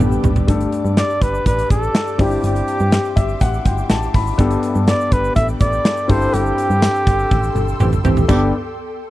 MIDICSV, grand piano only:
0, 0, Header, 1, 2, 480
1, 0, Start_track
1, 0, Key_signature, 1, "major"
1, 0, Tempo, 487805
1, 478, Time_signature, 4, 2, 24, 8
1, 8954, End_track
2, 0, Start_track
2, 0, Title_t, "Grand piano"
2, 0, Program_c, 0, 0
2, 0, Control_c, 0, 64, 127
2, 0, Note_on_c, 0, 43, 67
2, 0, Note_on_c, 0, 55, 69
2, 0, Note_on_c, 0, 59, 66
2, 0, Note_on_c, 0, 62, 68
2, 0, Note_on_c, 0, 67, 63
2, 0, Note_on_c, 0, 71, 78
2, 196, Note_off_c, 0, 43, 0
2, 451, Note_off_c, 0, 55, 0
2, 454, Note_off_c, 0, 59, 0
2, 457, Note_off_c, 0, 62, 0
2, 460, Note_off_c, 0, 67, 0
2, 464, Note_off_c, 0, 71, 0
2, 465, Note_on_c, 0, 57, 69
2, 472, Note_on_c, 0, 62, 62
2, 478, Note_on_c, 0, 43, 68
2, 479, Note_on_c, 0, 67, 64
2, 489, Note_on_c, 0, 69, 79
2, 491, Control_c, 0, 64, 0
2, 673, Control_c, 0, 64, 127
2, 1159, Note_off_c, 0, 43, 0
2, 2118, Note_off_c, 0, 57, 0
2, 2122, Note_off_c, 0, 62, 0
2, 2125, Note_off_c, 0, 67, 0
2, 2130, Note_off_c, 0, 69, 0
2, 2148, Note_on_c, 0, 60, 65
2, 2155, Note_on_c, 0, 62, 60
2, 2160, Note_on_c, 0, 43, 66
2, 2161, Note_on_c, 0, 64, 63
2, 2170, Control_c, 0, 64, 0
2, 2170, Note_on_c, 0, 67, 71
2, 2325, Control_c, 0, 64, 127
2, 2840, Note_off_c, 0, 43, 0
2, 3111, Note_on_c, 0, 76, 71
2, 3338, Note_off_c, 0, 76, 0
2, 3357, Note_on_c, 0, 78, 74
2, 3581, Note_off_c, 0, 78, 0
2, 3598, Note_on_c, 0, 79, 64
2, 3821, Note_off_c, 0, 79, 0
2, 3840, Note_on_c, 0, 81, 73
2, 4035, Note_off_c, 0, 60, 0
2, 4038, Note_off_c, 0, 62, 0
2, 4041, Note_off_c, 0, 64, 0
2, 4046, Note_off_c, 0, 67, 0
2, 4062, Note_off_c, 0, 81, 0
2, 4084, Note_on_c, 0, 83, 74
2, 4305, Note_off_c, 0, 83, 0
2, 4309, Note_on_c, 0, 59, 79
2, 4321, Note_on_c, 0, 62, 70
2, 4323, Note_on_c, 0, 43, 72
2, 4326, Note_on_c, 0, 67, 71
2, 4333, Control_c, 0, 64, 0
2, 4333, Note_on_c, 0, 69, 81
2, 4485, Control_c, 0, 64, 127
2, 5001, Note_off_c, 0, 43, 0
2, 5960, Note_off_c, 0, 59, 0
2, 5966, Note_off_c, 0, 62, 0
2, 5969, Note_off_c, 0, 67, 0
2, 5972, Note_off_c, 0, 69, 0
2, 5982, Note_on_c, 0, 60, 67
2, 5987, Note_on_c, 0, 64, 62
2, 5992, Note_on_c, 0, 43, 69
2, 5997, Note_on_c, 0, 67, 64
2, 6004, Note_on_c, 0, 69, 76
2, 6011, Control_c, 0, 64, 0
2, 6192, Control_c, 0, 64, 127
2, 6676, Note_off_c, 0, 43, 0
2, 7872, Note_off_c, 0, 60, 0
2, 7874, Note_off_c, 0, 64, 0
2, 7879, Note_off_c, 0, 67, 0
2, 7883, Note_off_c, 0, 69, 0
2, 8151, Note_on_c, 0, 62, 75
2, 8151, Note_on_c, 0, 67, 69
2, 8153, Note_on_c, 0, 59, 77
2, 8153, Note_on_c, 0, 69, 83
2, 8154, Note_on_c, 0, 43, 73
2, 8171, Control_c, 0, 64, 0
2, 8378, Note_off_c, 0, 59, 0
2, 8378, Note_off_c, 0, 62, 0
2, 8378, Note_off_c, 0, 67, 0
2, 8379, Note_off_c, 0, 43, 0
2, 8379, Note_off_c, 0, 69, 0
2, 8954, End_track
0, 0, End_of_file